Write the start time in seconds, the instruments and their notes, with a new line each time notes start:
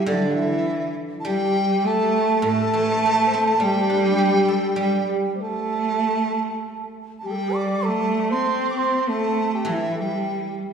0.06 guzheng D3, cello D3, xiao D4, dizi D5
0.29 xiao G4, dizi G5
0.35 cello E3, xiao E4, dizi E5
1.20 dizi A5
1.24 cello G3, guzheng G3, xiao G4, dizi G5
1.68 xiao G4
1.84 cello A3, xiao A4, dizi A5
2.42 guzheng A2, cello A3, xiao A4, dizi A5
2.73 guzheng E3
3.06 guzheng A3
3.26 xiao C5
3.34 guzheng C4, xiao A4
3.60 guzheng G3, cello G3, dizi G5
3.66 xiao G4
3.90 guzheng D4
4.18 guzheng G4
4.48 guzheng A4
4.76 guzheng G3, cello G3
4.80 xiao G4, dizi G5
5.35 cello A3, xiao C5
5.41 xiao A4, dizi A5
7.19 dizi A5
7.23 cello G3, xiao G4, dizi G5
7.31 xiao A4
7.35 xiao G4
7.52 xiao D5, dizi D6
7.83 xiao A4, dizi A5
7.87 cello A3
8.30 cello C4, xiao C5, dizi C6
8.70 dizi D6
8.75 xiao C5, dizi C6
8.99 xiao C5
9.07 cello A3, xiao A4, dizi A5
9.53 xiao G4, dizi G5
9.65 guzheng E3, cello E3, xiao E4
9.70 dizi E5
9.94 xiao A4
9.99 cello G3, xiao G4, dizi G5